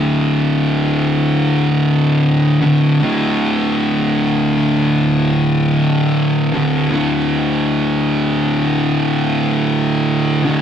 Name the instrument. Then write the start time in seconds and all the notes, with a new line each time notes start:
distorted electric guitar
Already playing: D2 A2 D3
2.62 D2 A2 D3
3.00 D2 A2 D3
6.54 D2 A2 D3
6.91 D2 A2 D3
10.45 D2 A2 D3